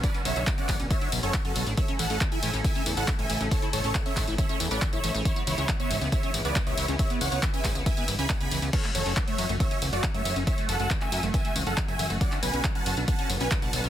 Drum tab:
CC |----------------|----------------|----------------|----------------|
RD |--x---x---x---x-|--x---x---x---x-|--x---x---x---x-|--x---x---x---x-|
HH |xxoxxxoxxxoxxxox|xxoxxxoxxxoxxxox|xxoxxxoxxxoxxxox|xxoxxxoxxxoxxxox|
TB |xxxxxxxxxxxxxxxx|xxxxxxxxxxxxxxxx|xxxxxxxxxxxxxxxx|xxxxxxxxxxxxxxxx|
CP |----x-x-----x---|----x-------x---|----x-x-----x---|----x-------x---|
BD |o---o-o-o---o---|o---o---o---o---|o---o-o-o---o---|o---o---o---o---|

CC |----------------|x---------------|----------------|----------------|
RD |--x---x---x---x-|--x---x---x---x-|--x---x---x---x-|--x---x---x---x-|
HH |xxoxxxoxxxoxxxox|xxoxxxoxxxoxxxox|xxoxxxoxxxoxxxox|xxoxxxoxxxoxxxox|
TB |xxxxxxxxxxxxxxxx|xxxxxxxxxxxxxxxx|xxxxxxxxxxxxxxxx|xxxxxxxxxxxxxxxx|
CP |----x-x-----x---|-x--x-------x---|----xx------x---|-x--x-------x---|
BD |o---o-o-o---o---|o---o---o---o---|o---o---o---o---|o---o---o---o---|